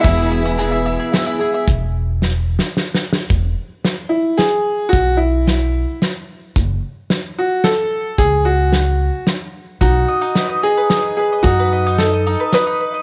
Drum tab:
HH |x--x--x--|x--------|x--x--x--|x--x--x--|
SD |------o--|---o-oooo|---o--o--|---o--o--|
BD |o--------|o--------|o--------|o--------|

HH |x--x--x--|x--x--x--|x--x--x--|x--x--x--|
SD |---o--o--|---o--o--|---o--o--|---o--o--|
BD |o--------|o--------|o--------|o--------|